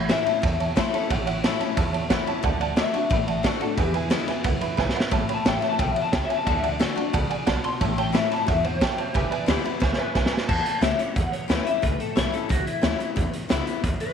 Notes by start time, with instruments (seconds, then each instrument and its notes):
Already playing: upright bass A1, steel-string acoustic guitar A2
0.09 steel-string acoustic guitar E3 A3 C#4 E4, honky-tonk piano C#5 E5 G#5, clean electric guitar E5, snare, ride
0.26 steel-string acoustic guitar C#4 E4, honky-tonk piano C#5 E5 A5, muted upright bass stroke, ride
0.42 steel-string acoustic guitar E2, upright bass E2, honky-tonk piano C#5 E5 A5, kick, ride
0.59 honky-tonk piano C#5 E5 A5, ride
0.76 steel-string acoustic guitar E3 A3 C#4 E4, clean electric guitar C5, honky-tonk piano C#5 E5 A5, kick, snare, ride
0.93 steel-string acoustic guitar C#4 E4, clean electric guitar A4, honky-tonk piano C#5 E5 A5, muted upright bass stroke, ride
1.10 upright bass A1, steel-string acoustic guitar A2, clean electric guitar G4, honky-tonk piano C#5 E5 F#5, kick, ride
1.25 clean electric guitar E4, honky-tonk piano C#5 E5 F#5, ride
1.42 steel-string acoustic guitar E3 A3 C#4, honky-tonk piano C#5 E5 A5, snare, ride
1.46 steel-string acoustic guitar E4
1.59 steel-string acoustic guitar E4, honky-tonk piano C#5 E5 A5, muted upright bass stroke, snare, ride
1.63 steel-string acoustic guitar C#4
1.75 upright bass E2, steel-string acoustic guitar E2, honky-tonk piano C#5 E5 A5, kick, ride
1.92 honky-tonk piano C#5 E5 A5, ride
2.09 steel-string acoustic guitar E3 A3 C#4 E4, honky-tonk piano C#5 E5 F#5, kick, snare, ride
2.27 steel-string acoustic guitar C#4 E4, honky-tonk piano C#5 E5 A5, muted upright bass stroke, ride
2.43 upright bass D2, steel-string acoustic guitar D3, honky-tonk piano D5 F#5 A5, kick, ride
2.60 honky-tonk piano D5 F#5 A5, ride
2.76 steel-string acoustic guitar D3 A3 D4 F#4, honky-tonk piano D5 A5, clean electric guitar E5, snare, ride
2.93 steel-string acoustic guitar D4 F#4, honky-tonk piano D5 F#5 A5, muted upright bass stroke, ride
3.10 upright bass A1, steel-string acoustic guitar A2, honky-tonk piano D5 F#5 B5, kick, ride
3.27 honky-tonk piano D5 F#5 A5, ride
3.43 steel-string acoustic guitar D3 A3 D4 F#4, clean electric guitar C5, honky-tonk piano D5 F#5 A5, kick, snare, ride
3.60 steel-string acoustic guitar D4 F#4, clean electric guitar A4, honky-tonk piano D5 F#5 A5, muted upright bass stroke, ride
3.77 upright bass E2, steel-string acoustic guitar E2, clean electric guitar G4, honky-tonk piano B4 E5 G#5, kick, ride
3.94 clean electric guitar E4, honky-tonk piano B4 E5 G#5, ride
4.10 steel-string acoustic guitar D3 G#3 B3 E4, honky-tonk piano B4 E5 G#5, snare, ride
4.28 steel-string acoustic guitar B3 E4, honky-tonk piano B4 E5 G#5, muted upright bass stroke, snare, ride
4.44 upright bass C#2, steel-string acoustic guitar F#2, honky-tonk piano B4 E5 F#5, kick, ride
4.60 honky-tonk piano B4 E5 B5, muted upright bass stroke, ride
4.77 upright bass B1, steel-string acoustic guitar G#2, honky-tonk piano B4 E5 G#5, kick, snare
4.90 snare
4.95 honky-tonk piano B4 E5 F#5
5.00 snare
5.11 upright bass A1, steel-string acoustic guitar A2, honky-tonk piano C#5 E5 A5, kick, ride
5.28 honky-tonk piano C#5 E5 B5, muted upright bass stroke, ride
5.34 clean electric guitar A5
5.45 upright bass A1, steel-string acoustic guitar E3 A3 C#4 E4, honky-tonk piano C#5 E5 A5, clean electric guitar G5, snare, ride
5.58 clean electric guitar E5, muted upright bass stroke
5.62 honky-tonk piano C#5 E5 A5, snare, ride
5.69 clean electric guitar A5
5.78 upright bass B1, steel-string acoustic guitar B2, honky-tonk piano C#5 E5 A5, clean electric guitar G5, kick, ride
5.92 honky-tonk piano C#5, clean electric guitar E5
5.96 honky-tonk piano E5 F#5, muted upright bass stroke, ride
6.02 clean electric guitar A5
6.12 upright bass C#2, steel-string acoustic guitar C#3, honky-tonk piano C#5 E5 A5, clean electric guitar G5, kick, snare, ride
6.25 honky-tonk piano C#5, clean electric guitar E5
6.29 honky-tonk piano E5 G#5, muted upright bass stroke, ride
6.36 clean electric guitar A5
6.45 upright bass D2, steel-string acoustic guitar D3, honky-tonk piano D5 F#5 A5, clean electric guitar A5, kick, ride
6.59 clean electric guitar E5
6.63 honky-tonk piano D5 F#5 A5, ride
6.70 clean electric guitar D5
6.79 steel-string acoustic guitar D3 A3 D4 F#4, honky-tonk piano D5 F#5 G#5, snare, ride
6.95 steel-string acoustic guitar D4 F#4, honky-tonk piano D5 F#5 A5, muted upright bass stroke, ride
7.13 upright bass C#2, steel-string acoustic guitar C#3, honky-tonk piano D5 F#5 A5, kick, ride
7.29 honky-tonk piano D5 F#5 G#5, muted upright bass stroke, ride
7.46 upright bass B1, steel-string acoustic guitar B2, honky-tonk piano D5 F#5 A5, kick, snare, ride
7.63 honky-tonk piano D5 F#5 A5, clean electric guitar C6, ride
7.80 upright bass A1, steel-string acoustic guitar A2, honky-tonk piano C#5 E5 A5, kick, ride
7.97 honky-tonk piano C#5 E5 A5, clean electric guitar G5, ride
8.12 steel-string acoustic guitar E3 A3 C#4 E4, honky-tonk piano C#5 A5, clean electric guitar E5, snare, ride
8.30 steel-string acoustic guitar C#4 E4, honky-tonk piano C#5 E5 B5, clean electric guitar A5, snare, ride
8.47 upright bass E2, steel-string acoustic guitar G#2, honky-tonk piano C#5 E5 F#5, clean electric guitar E5, kick, ride
8.64 clean electric guitar C5, honky-tonk piano C#5 E5 F#5, ride
8.80 steel-string acoustic guitar F#2, honky-tonk piano C#5 E5 A5, clean electric guitar G5, kick, snare, ride
8.97 clean electric guitar C5, honky-tonk piano C#5 E5 A5, muted upright bass stroke, ride
9.14 upright bass E1, steel-string acoustic guitar E2, clean electric guitar G4, honky-tonk piano B4 E5 G#5, kick, ride
9.30 honky-tonk piano B4 E5 G#5, clean electric guitar D5, muted upright bass stroke, ride
9.46 upright bass D2, steel-string acoustic guitar D3 G#3 B3 E4, clean electric guitar G4, honky-tonk piano B4 G#5, snare, ride
9.64 steel-string acoustic guitar B3 E4, clean electric guitar E4, honky-tonk piano B4 E5 B5, ride
9.80 upright bass C#2, steel-string acoustic guitar F#2, honky-tonk piano B4 E5 G#5, clean electric guitar C5, kick, snare
9.93 snare
9.97 clean electric guitar B4, honky-tonk piano B4 E5 G#5, muted upright bass stroke
10.14 upright bass B1, steel-string acoustic guitar G#2, honky-tonk piano B4 E5 G#5, kick, snare
10.26 snare
10.31 honky-tonk piano B4 E5 G#5, muted upright bass stroke
10.37 snare
10.48 upright bass E2, steel-string acoustic guitar A2, clean electric guitar A5, kick, crash
10.66 closed hi-hat
10.81 upright bass C#2, steel-string acoustic guitar E3 A3 C#4 E4, clean electric guitar E5, snare, closed hi-hat
10.99 steel-string acoustic guitar C#4 E4, clean electric guitar C#5, closed hi-hat
11.16 steel-string acoustic guitar E2, upright bass E2, clean electric guitar F#5, kick, closed hi-hat
11.32 clean electric guitar C#5, muted upright bass stroke, closed hi-hat
11.48 upright bass D2, steel-string acoustic guitar E3 A3 C#4 E4, clean electric guitar B4, snare, closed hi-hat
11.65 steel-string acoustic guitar C#4 E4, clean electric guitar E5, closed hi-hat
11.82 upright bass C#2, steel-string acoustic guitar A2, clean electric guitar B4, kick, closed hi-hat
12.00 clean electric guitar A4, muted upright bass stroke, closed hi-hat
12.15 upright bass B1, steel-string acoustic guitar E3 A3 C#4 E4, clean electric guitar C#5, snare, closed hi-hat
12.32 steel-string acoustic guitar C#4 E4, clean electric guitar A4, closed hi-hat
12.49 upright bass C#2, steel-string acoustic guitar E2, clean electric guitar F#4, kick, closed hi-hat
12.66 clean electric guitar E4, closed hi-hat
12.81 upright bass D2, steel-string acoustic guitar E3 A3 C#4 E4, snare, closed hi-hat
12.98 steel-string acoustic guitar C#4 E4, closed hi-hat
13.16 steel-string acoustic guitar E2, upright bass E2, kick, closed hi-hat
13.34 closed hi-hat
13.49 upright bass C#2, steel-string acoustic guitar D3 G#3 B3 E4, snare, closed hi-hat
13.66 steel-string acoustic guitar B3 E4, muted upright bass stroke, closed hi-hat
13.84 upright bass D2, steel-string acoustic guitar F#2, kick, closed hi-hat
14.00 clean electric guitar B4, muted upright bass stroke, closed hi-hat